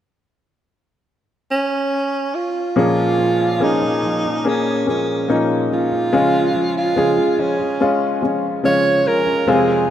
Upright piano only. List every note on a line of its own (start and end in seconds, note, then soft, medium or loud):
2.76 3.99 A#2 soft
2.76 3.99 F3 soft
2.76 3.57 A#3 medium
2.76 3.57 C#4 medium
2.76 3.57 G#4 medium
3.60 4.40 A#3 medium
3.60 4.41 C#4 soft
3.60 4.41 G#4 medium
4.45 4.85 A#3 medium
4.45 4.85 C#4 soft
4.45 4.85 G#4 medium
4.86 5.26 A#3 soft
4.86 5.27 C#4 soft
4.86 5.27 G#4 soft
5.28 6.08 A#3 soft
5.28 6.09 C#4 soft
5.28 6.09 D#4 medium
6.13 7.35 C#3 soft
6.13 6.93 G#3 medium
6.13 6.93 C#4 medium
6.13 6.93 F4 medium
6.96 7.76 G#3 medium
6.96 7.76 C#4 soft
6.96 7.77 G#4 medium
7.81 8.20 G#3 medium
7.81 8.20 C#4 medium
7.81 8.21 F4 medium
8.22 8.62 G#3 soft
8.22 8.62 C#4 soft
8.22 8.62 F4 soft
8.64 9.43 G#3 medium
8.64 9.44 C#4 medium
8.64 9.44 F4 medium
9.48 9.90 C3 soft
9.48 9.90 G#3 medium
9.48 9.90 C4 medium
9.48 9.90 F4 medium